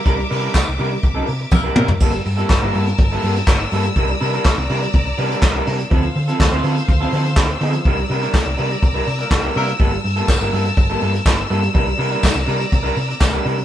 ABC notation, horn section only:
X:1
M:4/4
L:1/16
Q:1/4=123
K:Gdor
V:1 name="Horn section"
z12 [G,B,EB] z [G,B,EB]2 | z16 | z16 | z16 |
z8 z3 [G,B,EB] z2 [G,B,EB]2 | z16 | z16 |]